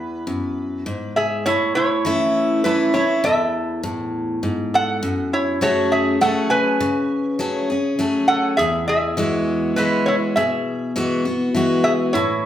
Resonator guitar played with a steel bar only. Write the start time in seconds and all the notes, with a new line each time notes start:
Already playing: B4
1.16 G#4 E5
1.46 E4 C#5
1.75 E4 C#5
2.64 E4 B4
2.94 E4 C#5
3.25 A4 E5
4.74 A4 F#5
5.33 E4 C#5
5.63 F#4 C#5
5.92 G#4 E5
6.21 A4 F#5
6.50 B4 G#5
8.28 A4 F#5
8.57 G#4 E5
8.88 G#4 E5
9.76 E4 B4
10.06 E4 C#5
10.36 G#4 E5
11.84 G#4 E5
12.13 E4 C#5